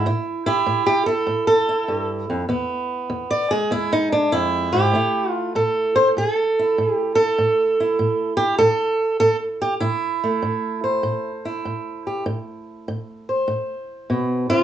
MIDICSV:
0, 0, Header, 1, 2, 480
1, 0, Start_track
1, 0, Key_signature, 0, "minor"
1, 0, Tempo, 610376
1, 46, Time_signature, 4, 2, 24, 8
1, 11508, End_track
2, 0, Start_track
2, 0, Title_t, "Steel-string acoustic guitar"
2, 0, Program_c, 0, 25
2, 47, Note_on_c, 0, 45, 78
2, 51, Note_on_c, 0, 64, 55
2, 364, Note_off_c, 0, 64, 0
2, 364, Note_on_c, 0, 64, 97
2, 372, Note_on_c, 0, 67, 48
2, 493, Note_off_c, 0, 45, 0
2, 522, Note_on_c, 0, 45, 71
2, 670, Note_off_c, 0, 67, 0
2, 680, Note_on_c, 0, 67, 98
2, 683, Note_off_c, 0, 64, 0
2, 832, Note_off_c, 0, 67, 0
2, 835, Note_on_c, 0, 69, 92
2, 851, Note_on_c, 0, 64, 45
2, 970, Note_off_c, 0, 45, 0
2, 996, Note_on_c, 0, 45, 76
2, 1148, Note_off_c, 0, 69, 0
2, 1158, Note_on_c, 0, 69, 95
2, 1325, Note_off_c, 0, 64, 0
2, 1328, Note_on_c, 0, 64, 50
2, 1446, Note_off_c, 0, 45, 0
2, 1480, Note_on_c, 0, 43, 60
2, 1637, Note_off_c, 0, 69, 0
2, 1802, Note_off_c, 0, 43, 0
2, 1806, Note_on_c, 0, 41, 66
2, 1952, Note_off_c, 0, 41, 0
2, 1956, Note_on_c, 0, 40, 78
2, 1962, Note_on_c, 0, 59, 54
2, 2404, Note_off_c, 0, 40, 0
2, 2435, Note_on_c, 0, 40, 70
2, 2600, Note_on_c, 0, 74, 99
2, 2623, Note_off_c, 0, 64, 0
2, 2755, Note_off_c, 0, 59, 0
2, 2757, Note_off_c, 0, 74, 0
2, 2758, Note_on_c, 0, 68, 93
2, 2769, Note_on_c, 0, 56, 50
2, 2883, Note_off_c, 0, 40, 0
2, 2916, Note_off_c, 0, 68, 0
2, 2917, Note_on_c, 0, 40, 76
2, 2924, Note_on_c, 0, 64, 90
2, 3079, Note_off_c, 0, 64, 0
2, 3087, Note_on_c, 0, 63, 95
2, 3240, Note_off_c, 0, 63, 0
2, 3243, Note_on_c, 0, 62, 84
2, 3364, Note_off_c, 0, 40, 0
2, 3398, Note_off_c, 0, 62, 0
2, 3399, Note_on_c, 0, 64, 105
2, 3404, Note_on_c, 0, 41, 65
2, 3716, Note_on_c, 0, 67, 92
2, 3722, Note_off_c, 0, 41, 0
2, 3726, Note_on_c, 0, 44, 56
2, 3860, Note_off_c, 0, 56, 0
2, 3876, Note_off_c, 0, 64, 0
2, 3878, Note_off_c, 0, 44, 0
2, 3879, Note_on_c, 0, 45, 66
2, 3890, Note_on_c, 0, 57, 45
2, 3895, Note_on_c, 0, 64, 45
2, 4172, Note_off_c, 0, 67, 0
2, 4172, Note_on_c, 0, 65, 92
2, 4325, Note_off_c, 0, 45, 0
2, 4353, Note_off_c, 0, 65, 0
2, 4367, Note_on_c, 0, 45, 64
2, 4371, Note_on_c, 0, 69, 78
2, 4684, Note_on_c, 0, 72, 97
2, 4775, Note_off_c, 0, 72, 0
2, 4809, Note_off_c, 0, 45, 0
2, 4841, Note_off_c, 0, 69, 0
2, 4850, Note_on_c, 0, 45, 64
2, 4859, Note_on_c, 0, 69, 81
2, 5182, Note_off_c, 0, 64, 0
2, 5185, Note_on_c, 0, 64, 41
2, 5290, Note_off_c, 0, 45, 0
2, 5333, Note_on_c, 0, 45, 70
2, 5465, Note_off_c, 0, 69, 0
2, 5465, Note_on_c, 0, 67, 81
2, 5616, Note_off_c, 0, 67, 0
2, 5626, Note_on_c, 0, 69, 108
2, 5772, Note_off_c, 0, 45, 0
2, 5807, Note_on_c, 0, 45, 72
2, 6133, Note_off_c, 0, 64, 0
2, 6136, Note_on_c, 0, 64, 43
2, 6249, Note_off_c, 0, 45, 0
2, 6285, Note_on_c, 0, 45, 68
2, 6578, Note_off_c, 0, 69, 0
2, 6581, Note_on_c, 0, 67, 99
2, 6604, Note_off_c, 0, 57, 0
2, 6729, Note_off_c, 0, 45, 0
2, 6746, Note_off_c, 0, 67, 0
2, 6751, Note_on_c, 0, 69, 103
2, 6761, Note_on_c, 0, 45, 75
2, 7207, Note_off_c, 0, 45, 0
2, 7225, Note_off_c, 0, 69, 0
2, 7234, Note_on_c, 0, 69, 97
2, 7239, Note_on_c, 0, 45, 66
2, 7360, Note_off_c, 0, 69, 0
2, 7562, Note_on_c, 0, 67, 90
2, 7655, Note_off_c, 0, 67, 0
2, 7687, Note_off_c, 0, 45, 0
2, 7710, Note_off_c, 0, 64, 0
2, 7710, Note_on_c, 0, 64, 75
2, 7715, Note_on_c, 0, 45, 76
2, 8050, Note_on_c, 0, 57, 44
2, 8165, Note_off_c, 0, 45, 0
2, 8198, Note_on_c, 0, 45, 66
2, 8518, Note_off_c, 0, 64, 0
2, 8522, Note_on_c, 0, 72, 44
2, 8647, Note_off_c, 0, 45, 0
2, 8674, Note_on_c, 0, 45, 69
2, 9007, Note_on_c, 0, 64, 47
2, 9126, Note_off_c, 0, 45, 0
2, 9163, Note_on_c, 0, 45, 63
2, 9489, Note_on_c, 0, 67, 42
2, 9611, Note_off_c, 0, 45, 0
2, 9624, Note_off_c, 0, 67, 0
2, 9640, Note_on_c, 0, 45, 76
2, 10089, Note_off_c, 0, 45, 0
2, 10129, Note_on_c, 0, 45, 72
2, 10448, Note_off_c, 0, 72, 0
2, 10451, Note_on_c, 0, 72, 42
2, 10574, Note_off_c, 0, 45, 0
2, 10598, Note_on_c, 0, 45, 67
2, 10802, Note_off_c, 0, 57, 0
2, 11049, Note_off_c, 0, 45, 0
2, 11086, Note_on_c, 0, 47, 59
2, 11400, Note_off_c, 0, 64, 0
2, 11400, Note_on_c, 0, 64, 109
2, 11406, Note_off_c, 0, 47, 0
2, 11409, Note_on_c, 0, 48, 60
2, 11487, Note_off_c, 0, 64, 0
2, 11487, Note_on_c, 0, 65, 109
2, 11508, Note_off_c, 0, 48, 0
2, 11508, Note_off_c, 0, 65, 0
2, 11508, Note_off_c, 0, 72, 0
2, 11508, End_track
0, 0, End_of_file